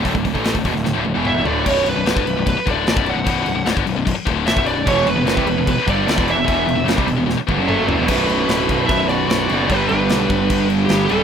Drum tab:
CC |----------------|x-x-x-x-x-x-x-x-|x-x-x-x-x-x-x-x-|x-x-x-x-x-x-x-x-|
HH |o-o-o-o---------|----------------|----------------|----------------|
SD |----o--oo-------|----o-------o---|----o-------o---|----o-------o---|
T1 |----------o-----|----------------|----------------|----------------|
T2 |------------o---|----------------|----------------|----------------|
FT |--------------o-|----------------|----------------|----------------|
BD |oooo-oo---------|o----o--o-o--o--|o----o--o-o--o--|o----o--o-o--o--|

CC |x-x-x-x---------|x-x-x-x-x-x-x-x-|x-x-x-x-x-x-x-x-|
HH |----------------|----------------|----------------|
SD |----o---o-------|----o-------o---|----o-------o---|
T1 |----------------|----------------|----------------|
T2 |------------o---|----------------|----------------|
FT |--------------o-|----------------|----------------|
BD |o----o----o-----|o-----o-o-------|o-----o-o-------|